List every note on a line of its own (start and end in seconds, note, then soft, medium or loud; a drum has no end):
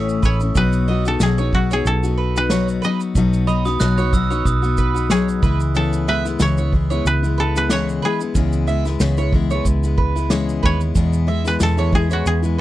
0.00 0.19 A1 medium
0.00 0.23 A2 loud
0.00 0.21 E3 medium
0.00 0.22 A3 loud
0.00 0.23 C#4 loud
0.00 0.24 E4 loud
0.09 shaker medium
0.22 0.53 A1 medium
0.22 0.40 E3 medium
0.22 0.41 A3 medium
0.22 0.41 C#4 medium
0.22 0.40 B4 medium
0.22 0.34 C#5 medium
0.22 kick medium
0.22 shaker soft
0.40 0.56 A3 soft
0.40 0.56 C#4 soft
0.40 0.55 E4 soft
0.40 shaker soft
0.55 1.16 B1 loud
0.55 0.88 B2 medium
0.55 0.86 F#3 medium
0.55 0.87 B3 medium
0.55 0.88 D#4 medium
0.55 0.89 F#4 loud
0.55 2.35 B4 loud
0.55 kick loud
0.55 shaker medium
0.73 shaker medium
0.88 1.06 F#3 medium
0.88 1.06 B3 medium
0.88 1.06 D#4 medium
0.88 1.04 F#4 medium
0.88 1.05 D#5 medium
1.05 1.20 B3 soft
1.05 1.20 D#4 medium
1.05 1.20 F#4 medium
1.05 1.29 A4 medium
1.05 shaker soft
1.20 1.81 B1 medium
1.20 1.38 B2 medium
1.20 1.39 F#3 medium
1.20 1.39 B3 medium
1.20 1.38 D#4 medium
1.20 1.37 F#4 medium
1.20 1.73 G#4 medium
1.20 snare loud
1.20 shaker medium
1.38 1.53 B3 soft
1.38 1.54 D#4 medium
1.38 1.53 F#4 soft
1.38 1.52 C#5 medium
1.38 shaker soft
1.53 1.71 F#3 medium
1.53 1.71 B3 medium
1.53 1.72 D#4 medium
1.53 3.66 F#4 medium
1.53 1.70 F#4 medium
1.53 kick medium
1.71 2.05 B3 soft
1.71 2.04 D#4 medium
1.71 2.02 F#4 medium
1.71 1.93 G#4 medium
1.71 1.85 C#5 medium
1.71 shaker medium
1.85 2.79 B1 medium
1.85 3.77 A4 loud
1.85 shaker medium
2.03 2.37 B3 soft
2.03 2.36 D#4 soft
2.03 2.34 F#4 medium
2.03 shaker medium
2.18 2.49 B4 medium
2.36 2.51 B3 soft
2.36 2.51 D#4 soft
2.36 2.50 F#4 medium
2.36 4.15 B4 loud
2.36 shaker medium
2.50 2.83 B2 medium
2.50 2.82 F#3 medium
2.50 2.83 B3 medium
2.50 2.84 D#4 medium
2.50 2.84 F#4 medium
2.50 2.67 C#5 medium
2.50 snare loud
2.50 shaker medium
2.68 shaker medium
2.82 3.15 F#3 medium
2.82 3.16 B3 medium
2.82 3.16 D#4 medium
2.82 2.99 B4 medium
2.82 4.39 D#5 loud
2.82 shaker soft
2.86 3.17 F#4 medium
3.00 shaker soft
3.15 3.76 B1 loud
3.15 3.48 B2 medium
3.15 3.46 F#3 medium
3.15 3.48 B3 medium
3.15 3.48 D#4 medium
3.15 3.49 F#4 medium
3.15 kick medium
3.15 shaker medium
3.33 shaker medium
3.47 3.66 F#3 medium
3.47 3.66 B3 medium
3.47 3.66 D#4 medium
3.47 3.64 F#4 medium
3.47 3.65 D#5 medium
3.47 3.56 B5 medium
3.47 shaker soft
3.65 3.80 B3 medium
3.65 3.80 D#4 medium
3.65 3.80 F#4 medium
3.65 3.81 D#6 medium
3.65 snare soft
3.65 shaker soft
3.80 4.42 B1 loud
3.80 3.98 B2 medium
3.80 3.98 F#3 medium
3.80 3.99 B3 medium
3.80 3.99 D#4 loud
3.80 3.97 F#4 medium
3.80 4.14 F#6 loud
3.80 snare loud
3.80 shaker medium
3.98 4.13 B3 soft
3.98 4.14 D#4 medium
3.98 4.13 F#4 medium
3.98 4.12 C#5 medium
3.98 shaker soft
4.13 4.31 F#3 medium
4.13 4.31 B3 medium
4.13 4.31 D#4 medium
4.13 4.29 F#4 medium
4.13 4.47 E6 medium
4.13 kick medium
4.13 shaker medium
4.30 4.64 B3 medium
4.30 4.63 D#4 medium
4.30 4.61 F#4 medium
4.30 4.45 C#5 medium
4.30 shaker medium
4.45 5.39 B1 loud
4.45 4.92 D#6 medium
4.45 kick medium
4.45 shaker medium
4.62 4.96 B3 soft
4.62 4.95 D#4 soft
4.62 4.93 F#4 medium
4.62 shaker soft
4.77 5.09 B4 medium
4.77 kick medium
4.77 shaker medium
4.94 5.10 B3 soft
4.94 5.11 D#4 soft
4.94 5.10 F#4 medium
4.94 shaker medium
5.10 5.43 B2 medium
5.10 5.42 F#3 medium
5.10 5.43 B3 medium
5.10 5.44 D#4 medium
5.10 5.44 F#4 medium
5.10 5.82 G#4 medium
5.10 5.27 C#5 medium
5.10 snare medium
5.10 shaker medium
5.29 shaker medium
5.42 6.36 C#2 loud
5.42 5.74 E3 medium
5.42 5.76 G#3 medium
5.42 5.75 B3 medium
5.42 5.76 E4 medium
5.42 5.60 B4 medium
5.42 kick loud
5.42 shaker soft
5.60 shaker soft
5.75 6.08 C#3 medium
5.75 6.06 E3 medium
5.75 6.09 B3 loud
5.75 6.09 E4 medium
5.75 7.39 A4 medium
5.75 shaker medium
5.93 shaker medium
6.07 6.26 E3 medium
6.07 6.26 G#3 medium
6.07 6.26 B3 medium
6.07 7.07 B4 medium
6.07 6.25 E5 medium
6.25 6.40 G#3 soft
6.25 6.41 B3 soft
6.25 6.40 E4 medium
6.25 snare soft
6.25 shaker soft
6.39 7.01 C#2 loud
6.39 6.58 C#3 medium
6.39 6.58 E3 medium
6.39 6.59 G#3 medium
6.39 6.59 B3 medium
6.39 6.57 E4 medium
6.39 7.72 C#5 loud
6.39 snare loud
6.39 shaker medium
6.57 6.73 G#3 soft
6.57 6.74 B3 soft
6.57 6.73 E4 medium
6.57 6.72 C#5 medium
6.57 shaker soft
6.72 6.91 E3 medium
6.72 6.91 G#3 medium
6.72 6.92 B3 medium
6.72 6.90 E4 medium
6.72 kick medium
6.90 7.25 G#3 soft
6.90 7.23 B3 medium
6.90 7.22 E4 medium
6.90 7.04 C#5 medium
6.90 shaker medium
7.05 7.99 C#2 loud
7.05 7.57 B4 loud
7.05 shaker medium
7.23 7.57 G#3 soft
7.23 7.56 B3 soft
7.23 7.54 E4 medium
7.23 shaker soft
7.38 8.11 A4 medium
7.38 7.70 B4 medium
7.56 7.71 G#3 soft
7.56 7.71 B3 medium
7.56 7.70 E4 medium
7.56 9.35 B4 medium
7.56 shaker medium
7.69 8.03 C#3 medium
7.69 8.02 E3 medium
7.69 8.03 G#3 loud
7.69 8.04 B3 medium
7.69 8.04 E4 medium
7.69 7.87 C#5 medium
7.69 9.38 C#5 loud
7.69 snare loud
7.69 shaker medium
7.89 shaker soft
8.02 8.21 E3 medium
8.02 8.22 G#3 medium
8.02 8.22 B3 medium
8.02 8.20 E4 medium
8.02 10.02 G#4 medium
8.02 8.20 B4 medium
8.20 8.36 G#3 soft
8.20 8.36 B3 soft
8.20 8.36 E4 soft
8.20 shaker medium
8.35 8.96 C#2 loud
8.35 8.68 C#3 medium
8.35 8.66 E3 medium
8.35 8.67 G#3 medium
8.35 8.68 B3 medium
8.35 8.69 E4 medium
8.35 kick loud
8.35 shaker medium
8.53 shaker medium
8.67 8.85 E3 medium
8.67 8.86 G#3 medium
8.67 8.86 B3 medium
8.67 8.84 E4 medium
8.67 8.85 E5 medium
8.67 shaker soft
8.85 9.00 G#3 medium
8.85 9.00 B3 medium
8.85 9.00 E4 medium
8.85 snare soft
8.85 shaker soft
9.00 9.61 C#2 loud
9.00 9.18 C#3 medium
9.00 9.19 E3 medium
9.00 9.19 G#3 medium
9.00 9.18 B3 loud
9.00 9.17 E4 medium
9.00 snare loud
9.00 shaker medium
9.17 9.33 G#3 soft
9.17 9.34 B3 medium
9.17 9.33 E4 medium
9.17 9.32 C#5 medium
9.17 shaker soft
9.33 9.51 E3 medium
9.33 9.51 G#3 medium
9.33 9.52 B3 medium
9.33 9.50 E4 medium
9.33 kick medium
9.50 9.85 G#3 soft
9.50 9.84 B3 medium
9.50 9.82 E4 medium
9.50 9.65 C#5 medium
9.50 shaker medium
9.65 10.59 C#2 loud
9.65 kick medium
9.65 shaker medium
9.83 10.17 G#3 soft
9.83 10.16 B3 medium
9.83 10.14 E4 medium
9.83 shaker medium
9.98 10.30 B4 medium
9.98 kick medium
10.16 10.30 G#3 medium
10.16 10.30 B3 medium
10.16 10.30 E4 medium
10.16 shaker medium
10.30 10.63 C#3 loud
10.30 10.63 E3 loud
10.30 10.62 G#3 loud
10.30 10.63 B3 loud
10.30 10.64 E4 loud
10.30 10.47 C#5 medium
10.30 snare loud
10.30 shaker medium
10.49 shaker medium
10.63 10.93 D#2 loud
10.63 10.95 G#3 medium
10.63 10.95 B3 medium
10.63 10.96 E4 medium
10.63 10.80 B4 medium
10.63 12.31 C#5 loud
10.63 kick loud
10.81 shaker medium
10.95 11.28 E2 medium
10.95 11.57 E2 loud
10.95 11.28 B2 medium
10.95 11.26 E3 medium
10.95 11.27 G#3 medium
10.95 11.28 B3 medium
10.95 11.28 E4 medium
10.95 kick loud
10.95 shaker medium
11.13 shaker medium
11.27 11.45 E3 medium
11.27 11.46 G#3 medium
11.27 11.44 B3 medium
11.27 11.43 E4 medium
11.27 11.45 E5 medium
11.45 11.59 E3 soft
11.45 11.60 G#3 medium
11.45 11.60 B3 soft
11.45 11.60 E4 medium
11.45 11.54 B4 medium
11.45 snare soft
11.45 shaker soft
11.60 11.78 E2 medium
11.60 12.22 E2 loud
11.60 11.78 B2 medium
11.60 11.79 E3 medium
11.60 11.78 G#3 medium
11.60 11.77 B3 medium
11.60 11.76 E4 medium
11.60 12.01 A4 loud
11.60 snare loud
11.60 shaker medium
11.77 11.91 E3 soft
11.77 11.92 G#3 soft
11.77 11.93 B3 medium
11.77 11.92 E4 medium
11.77 11.92 C#5 medium
11.77 shaker soft
11.92 12.10 E3 medium
11.92 12.11 G#3 medium
11.92 12.10 B3 medium
11.92 12.08 E4 medium
11.92 12.27 G#4 medium
11.92 kick medium
12.10 12.44 E3 soft
12.10 12.43 G#3 medium
12.10 12.42 B3 medium
12.10 12.41 E4 medium
12.10 12.61 F#4 medium
12.10 12.25 C#5 medium
12.10 shaker medium
12.26 12.61 E2 loud
12.26 12.36 G#4 loud
12.26 shaker medium
12.43 12.61 E3 soft
12.43 12.61 G#3 soft
12.43 12.61 B3 soft
12.43 12.61 E4 medium
12.43 shaker soft